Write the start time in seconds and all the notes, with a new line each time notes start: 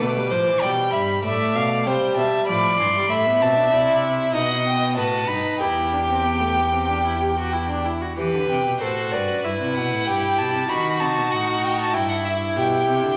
0.00 B2 A3 B4 D6
0.16 G3
0.31 A2 F3 C5
0.47 E3
0.61 B2 G3 D5 G5
0.92 G2 E5 B5
1.23 A2 A3 D5 E5
1.55 B2 F5
1.86 C3 G3 C5 G5
2.16 B2 E5 A5
2.47 A2 F3 D5 B5
2.79 G2 E3 C6
2.95 G3
3.09 A2 A3 E5 B5
3.26 B3
3.40 B2 C4 A5
3.56 D4
3.71 C3 E4 D5
4.04 E5
4.34 B2 D#4 D#5 F#5
4.65 B3 G5
4.97 A2 F#4 B4 A5
5.27 G2 D#4 B5
5.60 E2 E4 G4 G5
5.93 D4
6.09 C4
6.25 B3
6.40 A3
6.57 B3
6.73 C4
6.89 D4
7.05 E4
7.20 G4
7.37 F#4
7.53 E4
7.69 D4
7.85 E4
8.01 F#4
8.18 E3 G4 B4
8.34 D3
8.49 C3 G5
8.66 B2
8.80 A2 F#4 A4 C5
9.11 G2 B4 D5
9.29 F#2
9.44 G2 E4 E5
9.60 C3
9.76 B2 F#5
9.92 A2
10.07 G2 G4 G5
10.38 B2 A5
10.55 C3
10.69 D#3 D#4 F#4 B5
11.00 C3 A5
11.17 B2
11.32 A2 F#5
11.63 G5
11.80 A5
11.94 G2 E4 G5
12.09 F#5
12.25 E5
12.56 B2 G4 G5
12.88 C3
13.03 D3